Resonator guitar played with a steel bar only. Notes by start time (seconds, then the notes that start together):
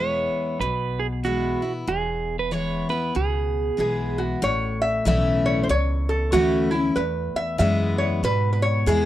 3.80 G#4
4.18 F#4
4.44 C#5
4.82 E5
5.08 E5
5.46 C#5
5.63 C5
5.70 C#5
6.09 A4
6.33 F#4
6.71 E4
6.96 B4
7.36 E5
7.59 E5
7.98 C#5
8.25 B4
8.53 B4
8.62 C#5
8.87 G#4